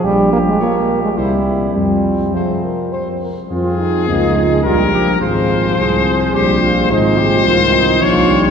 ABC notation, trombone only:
X:1
M:3/4
L:1/16
Q:1/4=106
K:Fm
V:1 name="Trombone" clef=bass
G,2 B, A, B,3 A, G,4 | G,4 F,4 z4 | C4 B,2 A,2 G,2 F,2 | F,8 G,4 |
A,2 A,2 E,4 F,2 G,2 |]